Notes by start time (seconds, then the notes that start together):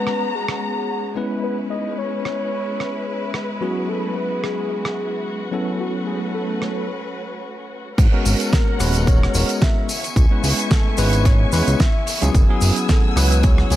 Already playing: G#3 B3 C#4 F#4 B4 A#5
0.07 cross-stick
0.35 G#4
0.48 cross-stick
1.15 G#3 B3 C#4 E4 B4
1.44 B4
1.70 D#5
1.98 C#5
2.25 C#5, cross-stick
2.80 cross-stick
3.34 cross-stick
3.61 F#3 B3 C#4 E4 F#4 G#4
3.89 A4
4.16 B4
4.43 G#4, cross-stick
4.85 cross-stick
5.52 F#3 A3 B3 C#4 E4 A4 B4
5.80 F#4
6.07 G#4
6.34 A4
6.62 cross-stick
7.98 G#1 A#4 C#5 F#5, kick, closed hi-hat, crash, tambourine, maracas
8.12 G#3 B3 C#4 F#4 A#4
8.25 G#1, open hi-hat, tambourine, maracas
8.40 closed hi-hat, tambourine, maracas
8.53 A#4, kick, snare, closed hi-hat, maracas
8.79 D#1 G#3 B3 C#4 F#4 B4, cross-stick, open hi-hat, tambourine, maracas
8.95 closed hi-hat, tambourine, maracas
9.06 G#3 B3 C#4 F#4 A#4 C#5, kick, closed hi-hat, tambourine, maracas
9.23 cross-stick
9.34 D#1 G#3 B3 C#4 F#4 A#4 C#5, open hi-hat, tambourine, maracas
9.49 closed hi-hat, tambourine, maracas
9.61 E5, kick, snare, closed hi-hat, maracas
9.88 B3 E5 G#5 C#6, open hi-hat, tambourine, maracas
10.04 closed hi-hat, tambourine, maracas
10.16 C#2, kick, closed hi-hat, tambourine, maracas
10.30 G#3 B3 C#4 E4 B4
10.43 C#2, open hi-hat, tambourine, maracas
10.59 closed hi-hat, tambourine, maracas
10.71 A4, kick, snare, closed hi-hat, tambourine, maracas
10.97 G#1 G#3 B3 C#4 E4 B4, open hi-hat, tambourine, maracas
11.13 closed hi-hat, tambourine, maracas
11.25 C#5, kick, snare, closed hi-hat, tambourine, maracas
11.52 E2 G#3 B3 C#4 E4 B4 C#5, cross-stick, open hi-hat, tambourine, maracas
11.67 C#2, closed hi-hat, tambourine, maracas
11.80 E5, kick, snare, closed hi-hat, tambourine, maracas
12.07 open hi-hat, tambourine, maracas
12.21 C#2 F#3 B3 C#4 E4 G#4, closed hi-hat, tambourine, maracas
12.35 F#1 F#5 G#5 E6, kick, closed hi-hat, tambourine, maracas
12.48 F#3 B3 C#4 E4 G#4
12.61 F#1, open hi-hat, tambourine, maracas
12.76 closed hi-hat, tambourine, maracas
12.89 A4, kick, snare, closed hi-hat, tambourine, maracas
13.16 C#2 F#3 B3 C#4 E4 B4, cross-stick, open hi-hat, tambourine, maracas
13.32 closed hi-hat, tambourine, maracas
13.43 F#3 B3 C#4 E4 G#4 C#5, kick, closed hi-hat, tambourine, maracas
13.58 cross-stick
13.70 C#2 F#3 B3 C#4 E4 G#4 C#5, open hi-hat, tambourine, maracas